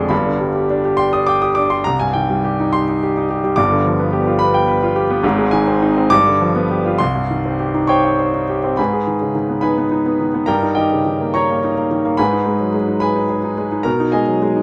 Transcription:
Already playing: F2 D3 F3 G#3 D4 C6
0.09 G1 G2 B5
0.26 D3
0.41 G3
0.55 G4
0.70 D4
0.85 G4
0.97 G5 C6
1.13 D5 D#6
1.27 G5 D6
1.42 G4 D#6
1.55 D4 D6
1.70 G4 C6
1.84 C2 A#5
2.00 G2 G#5
2.13 D#3 G5
2.30 G3
2.45 G4
2.60 D#4
2.73 G4 C6
2.89 D#4
3.03 G4
3.17 D#4
3.31 G4
3.44 G3
3.56 G1 G2 D6
3.71 D3
3.85 F3
3.99 B3
4.13 G4
4.27 F4
4.39 B4 B5
4.54 G5
4.68 B4
4.83 F4
4.96 G4
5.10 B3
5.23 G#1 G#2
5.39 G#3
5.51 D#3 G#5
5.67 C4
5.82 D#4
5.97 C4
6.10 G2 D6
6.27 D3
6.42 F3
6.56 B3
6.71 G4
6.86 F4
6.98 C2 C6
7.16 G2
7.31 D#3
7.46 C4
7.60 G4
7.74 D#4
7.87 C5 C#5 G5 C#6
8.05 G5
8.19 C5
8.34 D#4
8.50 G4
8.64 C4
8.77 G#2 B4 G#5 B5
8.93 G#4
9.07 D#3
9.21 C#3
9.35 D#3
9.49 B3
9.61 D#4 B4 G#5 B5
9.78 B3
9.92 D#4
10.06 B3
10.20 D#3
10.34 B3
10.46 G2 A#4 G5 A#5
10.63 D#4
10.75 D#3 G4 D#5 G5
10.92 C#3
11.06 D#3
11.21 A#3
11.34 D#4 C#5 A#5 C#6
11.50 A#3
11.64 D#4
11.77 A#3
11.91 D#3
12.05 A#3
12.17 G#2 B4 G#5 B5
12.33 D#4
12.46 G#3
12.60 F#3
12.74 G#3
12.88 D#4
13.00 G#4 B4 G#5 B5
13.16 D#4
13.29 G#4
13.44 D#4
13.58 G#3
13.72 D#4
13.83 B2 A#4 A#5
14.00 D#4
14.12 G#3 G#4 D#5 G#5
14.28 F#3
14.42 G#3
14.56 D#4

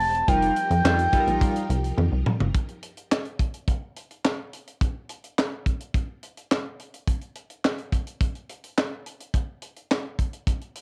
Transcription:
Already playing: A3 C4 G4 A5
0.00 E1, open hi-hat
0.15 closed hi-hat
0.28 F1 F3 G3 D#4 F4 G4 A#4 G5, kick, closed hi-hat
0.42 closed hi-hat
0.56 closed hi-hat
0.71 F2, closed hi-hat
0.84 F2 G3 D#4 F4 A4, snare, clap
0.99 closed hi-hat
1.13 G3 D#4 F4 A4, kick, closed hi-hat
1.20 A#4
1.27 A#1, closed hi-hat
1.41 kick, closed hi-hat
1.56 closed hi-hat
1.70 C2, closed hi-hat
1.84 closed hi-hat
1.98 F2, high tom
2.12 C2
2.26 mid tom
2.40 F#1, floor tom
2.54 kick, closed hi-hat
2.68 closed hi-hat
2.83 closed hi-hat
2.97 closed hi-hat
3.12 snare, clap
3.25 closed hi-hat
3.39 kick, closed hi-hat
3.54 closed hi-hat
3.68 kick, closed hi-hat
3.96 closed hi-hat
4.11 closed hi-hat
4.25 snare, clap
4.53 closed hi-hat
4.67 closed hi-hat
4.81 kick, closed hi-hat
5.09 closed hi-hat
5.24 closed hi-hat
5.39 snare, clap
5.66 kick, closed hi-hat
5.80 closed hi-hat
5.94 kick, closed hi-hat
6.23 closed hi-hat
6.37 closed hi-hat
6.52 snare, clap
6.80 closed hi-hat
6.94 closed hi-hat
7.08 kick, closed hi-hat
7.21 closed hi-hat
7.36 closed hi-hat
7.50 closed hi-hat
7.65 snare, clap
7.78 closed hi-hat
7.92 kick, closed hi-hat
8.07 closed hi-hat
8.21 kick, closed hi-hat
8.35 closed hi-hat
8.49 closed hi-hat
8.64 closed hi-hat
8.78 snare, clap
9.06 closed hi-hat
9.20 closed hi-hat
9.34 kick, closed hi-hat
9.62 closed hi-hat
9.76 closed hi-hat
9.91 snare, clap
10.19 kick, closed hi-hat
10.33 closed hi-hat
10.47 kick, closed hi-hat
10.61 closed hi-hat
10.75 closed hi-hat

